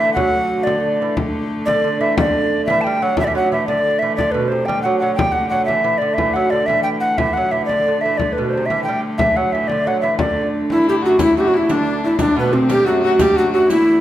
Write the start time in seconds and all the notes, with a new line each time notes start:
Already playing: D3 A3 E5
0.00 E3
0.13 F#3 F#5, frame drum
0.34 frame drum
0.63 D3 D5, frame drum
1.02 E3
1.17 frame drum
1.35 frame drum
1.66 D3 D5, frame drum
1.84 D3
2.01 E3 E5
2.18 D3 D5, frame drum
2.66 E3 E5, frame drum
2.81 G5 A5
2.86 G3
3.02 F#3 F#5
3.17 D3 E3 A3 E5, frame drum
3.24 E3 D5 E5
3.35 F#3 F#5
3.51 E3 E5, frame drum
3.67 D3 D5, frame drum
3.99 E3 E5
4.16 D3 D5, frame drum
4.32 B2 B4
4.48 C3 C5
4.52 frame drum
4.66 G3 G5, frame drum
4.83 F#3 F#5
4.99 F#3 F#5
5.15 G3 G5, frame drum
5.32 F#5
5.49 F#3 F#5, frame drum
5.65 E3 E5, frame drum
5.84 E3
5.98 D3 D5
6.14 E5, frame drum
6.18 E3
6.34 F#3 F#5
6.50 D3 D5, frame drum
6.66 E3 E5, frame drum
6.83 G5
7.00 F#5, frame drum
7.18 D3 E3 A3 E5, frame drum
7.34 F#3 F#5
7.51 E3 E5, frame drum
7.65 D5, frame drum
7.71 D3
7.88 D3
8.01 E5
8.05 E3
8.18 D3 D5, frame drum
8.33 B4
8.38 B2
8.49 C5, frame drum
8.57 C3
8.66 E5
8.70 E3, frame drum
8.84 G5
8.88 G3
9.18 E3 E5, frame drum
9.36 F#3 F#5
9.53 E3 E5, frame drum
9.68 D3 D5, frame drum
9.87 F#3 F#5
10.01 E3 E5
10.19 D3 D5, frame drum
10.37 frame drum
10.70 E2 E4, frame drum
10.88 G2 G4
11.02 F#2 F#4, frame drum
11.19 E2 D3 A3 E4, riq, frame drum
11.37 F#2 F#4 G4
11.47 F#2 F#4
11.53 E2 E4
11.69 D2 D4, riq, frame drum
12.04 E2 E4
12.19 D2 D4, riq, frame drum
12.36 B2 B3 B4
12.52 C3 C4, frame drum
12.69 G2 G4, riq, frame drum
12.85 F#2 F#4
13.02 F#2 F#4
13.19 G2 G4, riq, frame drum
13.36 F#2 F#4
13.51 F#2 F#4, frame drum
13.69 E2 E4, riq, frame drum